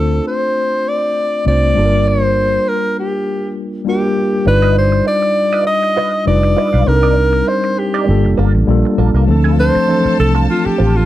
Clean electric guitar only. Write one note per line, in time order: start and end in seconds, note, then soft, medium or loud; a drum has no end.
4.46 muted clean electric guitar stroke soft
4.62 4.75 F4 soft
4.62 4.75 B4 medium
4.62 4.74 D#5 medium
4.76 muted clean electric guitar stroke soft
4.92 muted clean electric guitar stroke soft
5.06 muted clean electric guitar stroke soft
5.22 muted clean electric guitar stroke soft
5.53 5.65 F4 medium
5.53 5.65 B4 medium
5.53 5.65 D#5 medium
5.67 muted clean electric guitar stroke soft
5.83 muted clean electric guitar stroke soft
5.96 6.11 F4 medium
5.96 6.11 B4 medium
5.96 6.12 D#5 medium
6.26 muted clean electric guitar stroke soft
6.43 muted clean electric guitar stroke soft
6.57 6.68 F4 soft
6.57 6.68 B4 medium
6.57 6.69 D#5 medium
6.73 6.83 F4 soft
6.73 6.83 B4 soft
6.73 6.82 F5 medium
6.87 muted clean electric guitar stroke soft
7.03 7.16 D#4 medium
7.03 7.15 A#4 medium
7.03 7.15 D5 medium
7.17 muted clean electric guitar stroke soft
7.33 muted clean electric guitar stroke soft
7.47 muted clean electric guitar stroke soft
7.64 muted clean electric guitar stroke soft
7.94 8.07 D#4 medium
7.94 8.06 A#4 medium
7.94 8.06 D5 medium
8.25 muted clean electric guitar stroke soft
8.38 8.51 A#3 medium
8.38 8.52 F4 medium
8.38 8.52 A4 medium
8.55 muted clean electric guitar stroke soft
8.69 muted clean electric guitar stroke soft
8.85 muted clean electric guitar stroke soft
8.98 9.09 A#3 medium
8.98 9.09 F4 medium
8.98 9.10 A4 medium
9.15 9.25 A#3 soft
9.15 9.24 F4 soft
9.15 9.24 A#4 medium
9.28 muted clean electric guitar stroke soft
9.44 9.57 C4 soft
9.44 9.58 F4 medium
9.44 9.58 A4 medium
9.59 muted clean electric guitar stroke soft
9.75 muted clean electric guitar stroke soft
9.89 muted clean electric guitar stroke soft
10.05 muted clean electric guitar stroke soft
10.35 10.47 C4 medium
10.35 10.47 F4 medium
10.35 10.46 A4 medium
10.48 muted clean electric guitar stroke soft
10.65 muted clean electric guitar stroke soft
10.78 10.92 C4 medium
10.78 10.93 F4 medium
10.78 10.93 A4 medium
10.95 muted clean electric guitar stroke soft